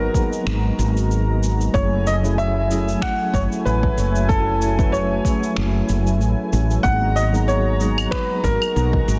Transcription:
0.00 0.14 F#3 medium
0.00 1.70 G#3 medium
0.00 0.15 A#3 medium
0.00 0.15 B3 medium
0.00 0.16 D#4 medium
0.00 1.70 F#4 medium
0.00 1.75 F#4 medium
0.00 0.11 A#4 medium
0.00 1.38 A#4 medium
0.00 0.11 B4 loud
0.00 1.70 A#5 medium
0.14 0.43 F#3 medium
0.14 0.43 A#3 medium
0.14 0.43 B3 medium
0.14 0.44 D#4 medium
0.14 0.44 G#4 medium
0.14 kick medium
0.14 cabasa medium
0.33 cabasa soft
0.46 0.70 G#1 medium
0.46 finger snap medium
0.46 cabasa soft
0.79 1.68 G#1 medium
0.79 cabasa medium
0.97 cabasa soft
1.11 cabasa soft
1.43 cabasa medium
1.61 cabasa soft
1.73 2.95 F#1 medium
1.73 2.19 F#3 medium
1.73 6.81 F#3 medium
1.73 2.19 A3 medium
1.73 6.81 A3 medium
1.73 2.19 C#4 medium
1.73 2.19 E4 medium
1.73 6.81 E4 medium
1.73 2.20 G#4 medium
1.73 2.07 C#5 medium
1.73 6.81 G#5 medium
1.73 kick loud
1.73 cabasa soft
2.07 2.14 D#5 medium
2.07 cabasa medium
2.23 2.66 F#3 medium
2.23 2.66 A3 medium
2.23 2.66 C#4 medium
2.23 2.67 E4 medium
2.23 2.67 G#4 loud
2.23 cabasa soft
2.38 3.04 E5 medium
2.38 cabasa soft
2.68 4.25 F#3 medium
2.68 4.26 A3 medium
2.68 4.26 C#4 medium
2.68 4.26 E4 medium
2.68 4.27 G#4 medium
2.68 cabasa medium
2.88 cabasa soft
3.02 3.35 F#5 loud
3.02 finger snap medium
3.02 kick medium
3.02 cabasa soft
3.34 3.46 F#1 medium
3.34 3.41 C#5 medium
3.34 kick loud
3.34 cabasa medium
3.52 cabasa soft
3.65 3.89 A1 medium
3.65 4.25 B4 medium
3.65 cabasa soft
3.83 kick loud
3.98 5.19 F#1 medium
3.98 cabasa medium
4.16 cabasa soft
4.28 4.74 F#3 medium
4.28 4.75 A3 medium
4.28 4.75 C#4 medium
4.28 4.75 E4 medium
4.28 4.75 F#4 medium
4.28 4.95 A4 medium
4.28 kick loud
4.28 cabasa soft
4.62 cabasa medium
4.79 5.22 F#3 medium
4.79 5.22 A3 medium
4.79 5.22 C#4 medium
4.79 5.22 E4 medium
4.79 5.22 B4 loud
4.79 kick loud
4.79 cabasa soft
4.92 5.53 C#5 medium
4.92 cabasa soft
5.24 5.53 F#3 medium
5.24 5.53 A3 medium
5.24 5.54 C#4 medium
5.24 5.54 E4 medium
5.24 5.54 G#4 medium
5.24 kick medium
5.24 cabasa medium
5.43 cabasa soft
5.56 5.81 F#1 medium
5.56 finger snap medium
5.56 cabasa soft
5.89 6.21 F#1 medium
5.89 cabasa medium
6.07 cabasa soft
6.21 6.34 A1 medium
6.21 cabasa soft
6.53 6.76 A1 medium
6.53 cabasa medium
6.71 cabasa soft
6.83 8.06 G#1 medium
6.83 7.29 F#3 medium
6.83 9.19 G#3 medium
6.83 7.29 A#3 medium
6.83 7.30 B3 medium
6.83 7.30 D#4 medium
6.83 9.19 F#4 medium
6.83 7.30 G#4 medium
6.83 7.17 F#5 loud
6.83 9.19 A#5 medium
6.83 kick loud
6.83 cabasa soft
7.16 7.23 D#5 medium
7.16 cabasa medium
7.32 7.76 F#3 medium
7.32 7.76 A#3 medium
7.32 7.77 B3 medium
7.32 7.77 D#4 medium
7.32 7.77 G#4 loud
7.32 cabasa soft
7.48 8.14 C#5 medium
7.48 cabasa soft
7.78 9.19 F#3 medium
7.78 9.19 G#3 medium
7.78 9.19 B3 medium
7.78 9.19 D#4 medium
7.78 9.19 G#4 medium
7.78 cabasa medium
7.98 cabasa soft
7.98 claves medium
8.11 8.45 B4 medium
8.11 finger snap medium
8.11 kick medium
8.11 cabasa soft
8.44 8.57 G#1 medium
8.44 9.19 A#4 medium
8.44 kick loud
8.44 cabasa medium
8.62 cabasa soft
8.62 claves medium
8.76 9.00 B1 medium
8.76 cabasa soft
8.93 kick medium
9.08 9.19 G#1 medium
9.08 cabasa medium

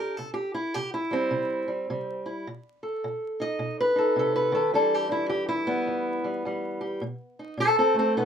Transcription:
0.00 0.13 E2 medium
0.00 0.15 D4 soft
0.00 0.16 G4 medium
0.00 0.17 A#4 medium
0.17 0.71 C3 medium
0.17 0.33 A4 medium
0.34 0.54 G4 medium
0.54 0.74 E4 medium
0.74 1.28 C3 medium
0.74 0.93 G4 medium
0.94 1.70 E4 medium
1.11 1.67 G3 soft
1.11 2.27 C4 medium
1.31 1.84 C3 medium
1.68 1.89 G3 soft
1.90 2.42 C3 medium
1.90 2.46 G3 soft
2.26 2.46 E4 medium
2.47 2.99 B2 medium
2.83 3.97 A4 soft
3.04 3.56 B2 medium
3.40 3.94 D#4 soft
3.40 3.79 D#5 loud
3.59 4.12 B2 medium
3.80 4.34 B4 loud
3.96 4.71 D#4 soft
3.96 4.17 A4 medium
4.16 4.52 C3 medium
4.16 4.54 A4 medium
4.36 4.74 B4 medium
4.52 4.73 D#3 medium
4.52 4.74 A4 medium
4.73 5.26 E2 medium
4.73 6.99 E3 medium
4.73 5.66 G3 medium
4.73 5.08 D4 soft
4.73 4.94 A4 medium
4.94 5.11 G4 medium
5.09 5.66 D4 soft
5.09 5.29 E4 medium
5.29 5.83 E2 medium
5.29 5.48 G4 medium
5.49 6.25 E4 medium
5.67 6.23 G3 soft
5.67 6.82 B3 medium
5.87 6.40 E2 medium
6.24 6.45 G3 soft
6.45 6.98 E2 medium
6.45 7.03 G3 soft
6.81 7.00 G4 soft
7.01 7.54 B2 medium
7.39 7.61 D#4 soft
7.57 8.11 B2 medium
7.57 7.77 C4 medium
7.57 7.78 A4 medium
7.78 7.97 C4 medium
7.78 7.97 A4 medium
7.94 8.25 A3 soft
7.99 8.17 C4 medium
7.99 8.25 A4 medium
8.17 8.25 B2 medium
8.17 8.22 B3 medium
8.17 8.25 D#4 medium

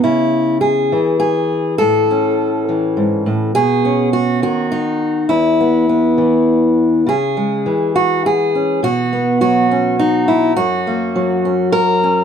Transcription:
0.04 0.92 C#3 medium
0.04 0.60 E4 medium
0.61 1.18 G#4 medium
0.92 1.77 E3 medium
1.20 1.78 G#4 medium
1.78 3.25 A2 medium
1.78 3.54 A4 loud
2.11 3.52 C#4 soft
2.69 3.52 E3 medium
2.97 3.26 G#2 medium
3.26 3.55 A2 medium
3.55 4.42 B2 medium
3.55 4.13 G#4 loud
3.85 4.71 C#4 soft
4.13 4.41 F#4 medium
4.42 5.26 D#3 medium
4.42 5.29 F#4 medium
4.72 5.30 D#4 medium
5.29 7.07 E2 medium
5.29 7.06 E4 medium
5.61 5.88 B3 soft
5.89 7.07 B3 medium
6.18 7.03 E3 medium
7.06 7.65 C#3 medium
7.06 7.95 G#4 medium
7.37 8.80 G#3 soft
7.66 8.80 E3 medium
7.96 8.25 F#4 medium
8.26 8.83 G#4 medium
8.55 8.86 C#4 soft
8.83 10.53 B2 medium
8.83 9.40 F#4 loud
9.13 10.53 B3 soft
9.41 10.53 F#3 medium
9.41 10.28 F#4 loud
9.71 9.99 C#4 soft
9.99 10.57 D#4 medium
10.28 10.56 E4 medium
10.56 12.24 F#2 medium
10.56 11.72 F#4 loud
10.87 12.24 A#3 soft
11.16 12.24 F#3 medium
11.45 12.02 C#4 soft
11.72 12.24 A#4 loud
12.03 12.24 C#4 soft

